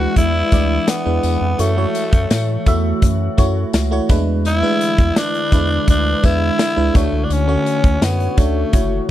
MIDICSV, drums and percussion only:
0, 0, Header, 1, 2, 480
1, 0, Start_track
1, 0, Tempo, 714286
1, 1070, Time_signature, 4, 2, 24, 8
1, 6119, End_track
2, 0, Start_track
2, 0, Title_t, "Drums"
2, 109, Note_on_c, 9, 42, 94
2, 110, Note_on_c, 9, 36, 91
2, 177, Note_off_c, 9, 36, 0
2, 177, Note_off_c, 9, 42, 0
2, 347, Note_on_c, 9, 42, 74
2, 350, Note_on_c, 9, 54, 47
2, 351, Note_on_c, 9, 36, 91
2, 414, Note_off_c, 9, 42, 0
2, 418, Note_off_c, 9, 36, 0
2, 418, Note_off_c, 9, 54, 0
2, 589, Note_on_c, 9, 38, 102
2, 589, Note_on_c, 9, 54, 89
2, 591, Note_on_c, 9, 42, 86
2, 657, Note_off_c, 9, 38, 0
2, 657, Note_off_c, 9, 54, 0
2, 658, Note_off_c, 9, 42, 0
2, 829, Note_on_c, 9, 54, 57
2, 830, Note_on_c, 9, 42, 67
2, 896, Note_off_c, 9, 54, 0
2, 897, Note_off_c, 9, 42, 0
2, 1069, Note_on_c, 9, 42, 91
2, 1070, Note_on_c, 9, 54, 50
2, 1136, Note_off_c, 9, 42, 0
2, 1137, Note_off_c, 9, 54, 0
2, 1309, Note_on_c, 9, 42, 71
2, 1309, Note_on_c, 9, 54, 45
2, 1376, Note_off_c, 9, 42, 0
2, 1377, Note_off_c, 9, 54, 0
2, 1430, Note_on_c, 9, 36, 97
2, 1430, Note_on_c, 9, 42, 48
2, 1497, Note_off_c, 9, 36, 0
2, 1497, Note_off_c, 9, 42, 0
2, 1549, Note_on_c, 9, 54, 85
2, 1552, Note_off_c, 9, 54, 0
2, 1552, Note_on_c, 9, 38, 111
2, 1552, Note_on_c, 9, 42, 88
2, 1552, Note_on_c, 9, 54, 66
2, 1619, Note_off_c, 9, 38, 0
2, 1619, Note_off_c, 9, 42, 0
2, 1619, Note_off_c, 9, 54, 0
2, 1788, Note_on_c, 9, 54, 33
2, 1790, Note_on_c, 9, 42, 74
2, 1791, Note_on_c, 9, 36, 93
2, 1855, Note_off_c, 9, 54, 0
2, 1857, Note_off_c, 9, 42, 0
2, 1858, Note_off_c, 9, 36, 0
2, 2029, Note_on_c, 9, 54, 31
2, 2030, Note_on_c, 9, 42, 99
2, 2031, Note_on_c, 9, 36, 92
2, 2096, Note_off_c, 9, 54, 0
2, 2097, Note_off_c, 9, 42, 0
2, 2099, Note_off_c, 9, 36, 0
2, 2270, Note_on_c, 9, 54, 50
2, 2272, Note_on_c, 9, 36, 96
2, 2272, Note_on_c, 9, 42, 74
2, 2337, Note_off_c, 9, 54, 0
2, 2339, Note_off_c, 9, 36, 0
2, 2339, Note_off_c, 9, 42, 0
2, 2509, Note_on_c, 9, 54, 86
2, 2512, Note_off_c, 9, 54, 0
2, 2512, Note_on_c, 9, 54, 67
2, 2513, Note_on_c, 9, 38, 104
2, 2514, Note_on_c, 9, 42, 88
2, 2580, Note_off_c, 9, 38, 0
2, 2580, Note_off_c, 9, 54, 0
2, 2581, Note_off_c, 9, 42, 0
2, 2748, Note_on_c, 9, 54, 57
2, 2752, Note_on_c, 9, 36, 109
2, 2752, Note_on_c, 9, 42, 67
2, 2815, Note_off_c, 9, 54, 0
2, 2819, Note_off_c, 9, 36, 0
2, 2820, Note_off_c, 9, 42, 0
2, 2990, Note_on_c, 9, 54, 52
2, 2993, Note_on_c, 9, 42, 93
2, 3057, Note_off_c, 9, 54, 0
2, 3061, Note_off_c, 9, 42, 0
2, 3230, Note_on_c, 9, 54, 42
2, 3232, Note_on_c, 9, 42, 70
2, 3297, Note_off_c, 9, 54, 0
2, 3299, Note_off_c, 9, 42, 0
2, 3348, Note_on_c, 9, 42, 48
2, 3349, Note_on_c, 9, 36, 96
2, 3415, Note_off_c, 9, 42, 0
2, 3416, Note_off_c, 9, 36, 0
2, 3470, Note_on_c, 9, 38, 110
2, 3470, Note_on_c, 9, 54, 85
2, 3471, Note_on_c, 9, 42, 87
2, 3537, Note_off_c, 9, 38, 0
2, 3537, Note_off_c, 9, 54, 0
2, 3538, Note_off_c, 9, 42, 0
2, 3591, Note_on_c, 9, 42, 51
2, 3658, Note_off_c, 9, 42, 0
2, 3709, Note_on_c, 9, 42, 71
2, 3710, Note_on_c, 9, 36, 92
2, 3711, Note_on_c, 9, 54, 33
2, 3776, Note_off_c, 9, 42, 0
2, 3778, Note_off_c, 9, 36, 0
2, 3778, Note_off_c, 9, 54, 0
2, 3949, Note_on_c, 9, 42, 98
2, 3950, Note_on_c, 9, 36, 94
2, 3951, Note_on_c, 9, 54, 33
2, 4016, Note_off_c, 9, 42, 0
2, 4017, Note_off_c, 9, 36, 0
2, 4018, Note_off_c, 9, 54, 0
2, 4189, Note_on_c, 9, 42, 71
2, 4191, Note_on_c, 9, 36, 94
2, 4191, Note_on_c, 9, 54, 48
2, 4257, Note_off_c, 9, 42, 0
2, 4258, Note_off_c, 9, 36, 0
2, 4258, Note_off_c, 9, 54, 0
2, 4430, Note_on_c, 9, 54, 65
2, 4431, Note_off_c, 9, 54, 0
2, 4431, Note_on_c, 9, 38, 111
2, 4431, Note_on_c, 9, 54, 88
2, 4432, Note_on_c, 9, 42, 85
2, 4498, Note_off_c, 9, 38, 0
2, 4498, Note_off_c, 9, 54, 0
2, 4499, Note_off_c, 9, 42, 0
2, 4670, Note_on_c, 9, 36, 101
2, 4670, Note_on_c, 9, 42, 73
2, 4670, Note_on_c, 9, 54, 58
2, 4737, Note_off_c, 9, 42, 0
2, 4737, Note_off_c, 9, 54, 0
2, 4738, Note_off_c, 9, 36, 0
2, 4907, Note_on_c, 9, 54, 53
2, 4910, Note_on_c, 9, 42, 86
2, 4975, Note_off_c, 9, 54, 0
2, 4977, Note_off_c, 9, 42, 0
2, 5149, Note_on_c, 9, 54, 43
2, 5150, Note_on_c, 9, 42, 70
2, 5217, Note_off_c, 9, 42, 0
2, 5217, Note_off_c, 9, 54, 0
2, 5268, Note_on_c, 9, 36, 93
2, 5268, Note_on_c, 9, 42, 47
2, 5335, Note_off_c, 9, 36, 0
2, 5336, Note_off_c, 9, 42, 0
2, 5390, Note_on_c, 9, 38, 105
2, 5390, Note_on_c, 9, 54, 65
2, 5391, Note_off_c, 9, 54, 0
2, 5391, Note_on_c, 9, 42, 87
2, 5391, Note_on_c, 9, 54, 83
2, 5458, Note_off_c, 9, 38, 0
2, 5458, Note_off_c, 9, 42, 0
2, 5458, Note_off_c, 9, 54, 0
2, 5511, Note_on_c, 9, 42, 49
2, 5578, Note_off_c, 9, 42, 0
2, 5628, Note_on_c, 9, 54, 32
2, 5629, Note_on_c, 9, 36, 98
2, 5630, Note_on_c, 9, 42, 72
2, 5695, Note_off_c, 9, 54, 0
2, 5697, Note_off_c, 9, 36, 0
2, 5697, Note_off_c, 9, 42, 0
2, 5867, Note_on_c, 9, 42, 95
2, 5869, Note_on_c, 9, 36, 94
2, 5869, Note_on_c, 9, 54, 30
2, 5934, Note_off_c, 9, 42, 0
2, 5936, Note_off_c, 9, 36, 0
2, 5936, Note_off_c, 9, 54, 0
2, 6119, End_track
0, 0, End_of_file